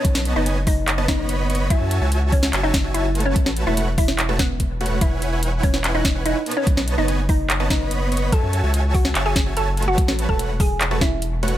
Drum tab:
HH |x---x---x---o---x---x---x---xx--|x---x---x---o---x---x---x---xx--|x---x---x---o---x---x---x---xx--|x---x---x---o---x---x---x---xx--|
CP |----------------x---------------|----------------x---------------|----------------x---------------|----------------x---------------|
SD |--o-----------------o-----------|--------------o-----o-----------|--o-----------o-----o-----------|--------------o-----o-----------|
BD |o-----------o-------o-----------|o-----------o-------o-----------|o-----------o-------o---o-------|o-----------o-------o-----------|

HH |x---x---x---o---x---x---x---xx--|x---x---x---o---x---x---x---xx--|x---x---x---o---x---x---x---xx--|
CP |----------------x---------------|----------------x---------------|----------------x---------------|
SD |--o-----------------o-----------|--------------o-----o-----------|--o-----------------o-----------|
BD |o-----------o-------o-----------|o-----------o-------o-----------|o-----o-----o-------o-----------|